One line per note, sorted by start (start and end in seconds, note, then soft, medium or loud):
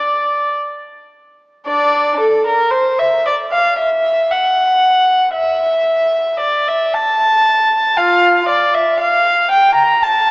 0.00 0.53 D5 medium
1.66 2.16 D4 soft
1.66 2.16 D5 medium
2.20 2.46 A4 medium
2.46 2.72 A#4 medium
2.71 2.98 C5 medium
2.99 3.25 E5 medium
3.27 3.35 D5 medium
3.52 3.78 F5 medium
3.79 4.29 E5 medium
4.31 5.34 F#5 medium
5.34 6.38 E5 medium
6.40 6.66 D5 medium
6.68 6.94 E5 medium
6.94 7.97 A5 medium
7.97 8.45 F4 soft
7.97 8.48 F5 medium
8.49 8.74 D5 medium
8.74 9.00 E5 medium
9.00 9.50 F5 medium
9.51 9.76 G5 medium
9.75 10.01 A#5 medium
10.03 10.31 A5 medium